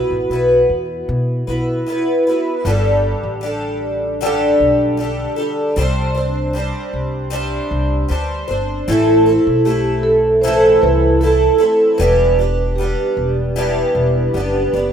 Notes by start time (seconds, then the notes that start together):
Already playing: B3 E4 F#4 B4
0.10 A1
0.30 B1 B3 E4 F#4 B4
0.70 E2
1.09 B2
1.47 B1 B3 E4 F#4 B4
1.86 B3 E4 F#4 B4
2.27 B3 E4 F#4 B4
2.65 G1 G2 D3 G3 D4 G4 A4
3.23 A1
3.41 G3 D4 G4 A4
4.21 G2 D3 G3 D4 G4 A4
4.60 B1
4.97 G3 D4 G4 A4
5.36 G3 D4 G4 A4
5.76 C2 C3 G3 C4 D4 C5
6.14 C4 D4 C5
6.53 G3 C4 D4 C5
6.93 C2
7.30 C3 G3 C4 D4 C5
7.71 C2
8.08 D2 G3 C4 D4 C5
8.48 G1 C4 D4 C5
8.88 A1 A2 E3 A3 C4 E4 A4
9.26 A3 C4 E4 A4
9.47 B1
9.65 A3 C4 E4 G4 A4
10.03 A4
10.42 A2 E3 A3 C4 E4 A4 C5
10.82 C2 B4
11.21 A3 C4 E4 A4
11.58 A3 C4 E4 A4
11.98 E1 E3 G3 B3 D4 G4 B4
12.39 B3 D4 G4
12.76 G3 B3 G4
12.81 D4 G4
13.17 E1
13.56 E3 G3 B3 D4 G4
13.95 E1
14.34 F#1 G3 B3 D4 G4
14.73 F#1 B3 D4 G4